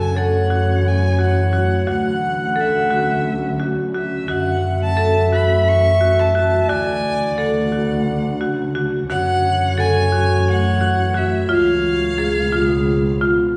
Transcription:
Already playing: F#2 E3 A3 F#4 A4
0.01 G#5
0.16 A4 C#5 F#5
0.50 F#4
0.88 G#5
1.19 F#4 F#5
1.53 F#4
1.87 D2 D3 C#4 F#4 F#5
2.56 A4
2.60 E5
2.91 F#4
3.60 F#4
3.94 F#4 E5
4.28 F#2 E3 A3 F#4 E5 F#5
4.82 A5
4.97 A4
5.32 F#4 B5
5.68 C#6
6.01 F#4
6.19 A5
6.35 F#4 A5
6.69 D2 C#3 D3 F#4 D5 G#5
7.38 A4 F#5
7.72 F#4
8.41 F#4
8.75 F#4
9.10 F#2 E3 A3 F#4 C#5 F#5
9.78 A4 G#5
10.12 F#4
10.50 F#5
10.81 F#4
11.14 F#4 E5
11.49 C#2 C#3 B3 F4 C#5
11.54 F5
12.18 G#4
12.52 F4 G#4
13.21 F4

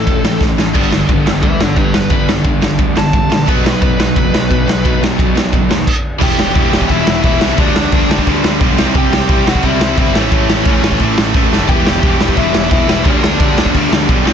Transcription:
Already playing: A2 E3 A3 C#4 E4 A4
0.07 E1 A2 E3, kick, ride
0.23 A1 A2 E3, snare
0.41 A1 A2 E3, kick, snare
0.57 A1 A2 E3, snare
0.73 G1 G2 D3 G3 B3 D4, kick, crash
0.92 G2 D3, snare
1.08 G1 G2 D3, kick, ride
1.26 G1 G2 D3, snare
1.43 D2 G2 D3 B4 E5, kick, ride
1.60 G1 G2 D3 A4 D5, snare
1.76 G1 G2 D3 G4 B4, kick, ride
1.94 G1 G2 D3 B4, snare
2.10 G1 G2 D3 G3 B3 D4, kick, ride
2.29 G2 D3, snare
2.44 G1 G2 D3, kick, ride
2.62 G1 G2 D3, snare
2.79 D2 G2 D3, kick, ride
2.96 G1 G2 D3 A5, snare
3.13 G1 G2 D3, kick, ride
3.31 A#1 G2 D3, snare
3.46 B1 B2 F#3 B3 D#4 B4, kick, ride
3.65 B2 F#3 B4, snare
3.82 B1 B2 F#3 B4, kick, ride
3.99 B1 B2 F#3 B4, snare
4.16 F#1 B2 F#3, kick, ride
4.32 B1 B2 F#3, snare
4.49 B1 B2 F#3, kick, ride
4.66 B1 B2 F#3, snare
4.83 B1 B2 F#3 B3 D#4, kick, ride
5.01 B2 F#3, snare
5.17 B1 B2 F#3, kick, ride
5.34 B1 B2 F#3, snare
5.53 F#1 B2 F#3, kick, ride
5.69 D#2 B2 F#3, snare
5.87 kick, crash
6.19 E1 E2 B2 E3 G3 B3, kick, crash
6.23 E4 G4 G5
6.38 E1, snare
6.55 E1 E2 B2 E3, kick, crash
6.72 E1 E2 B2 E3, snare
6.81 kick
6.89 E1 E2 B2 E3 E4 E5, kick, crash
7.07 E1, snare
7.23 E1 E2 B2 E3 E4 E5, kick, crash
7.41 C2 E2 B2 E3, snare
7.57 D2 G2 D3 G3 B3 D4 D5, kick, crash
7.75 D2, snare
7.92 D2 G2 D3 G3, kick, crash
8.09 D2 G2 D3 G3, snare
8.18 kick
8.27 D2 G2 D3 G3, kick, crash
8.44 D2, snare
8.61 B1 G2 D3 G3, kick, crash
8.77 C2 C3 G3 C4, snare
8.81 E4
8.95 C2 C3 G3 C4 G4 G5, kick, crash
9.10 C2, snare
9.29 C2 C3 G3 C4, kick, crash
9.47 C2 C3 G3 C4 F#4 F#5, snare
9.55 kick
9.63 C2 C3 G3 C4 E4 E5, kick, crash
9.80 C2, snare
9.97 G1 C3 G3 C4 E4 E5, kick, crash
10.13 A1 A2 E3 A3 C#4 C#5, snare
10.18 E4
10.32 A1 A2 E3 A3, kick, crash
10.49 A1, snare
10.65 A1 A2 E3 A3, kick, crash
10.83 A1 A2 E3 A3, snare
10.92 kick
11.00 A1 A2 E3 A3, kick, crash
11.18 A1, snare
11.34 A1 A2 E3 A3, kick, crash
11.53 F#1 A2 E3 A3, snare
11.68 E1 E2 B2 E3 G3 B3 E4 G4 G5, kick, crash
11.86 E1, snare
12.03 E1 E2 B2 E3, kick, crash
12.20 E1 E2 B2 E3, snare
12.28 kick
12.37 E1 E2 B2 E3 E4 E5, kick, crash
12.54 E1, snare
12.70 E1 E2 B2 E3 E4 E5, kick, crash
12.88 E1 E2 B2 E3, snare
13.03 D2 G2 D3 G3 B3 D4 D5, kick, crash
13.23 D2, snare
13.39 D2 G2 D3 G3, kick, crash
13.56 D2 G2 D3 G3, snare
13.66 kick
13.74 D2 G2 D3 G3, kick, crash
13.92 D2, snare
14.08 B1 G2 D3 G3, kick, crash
14.24 C2 C3 G3 C4 E4, snare

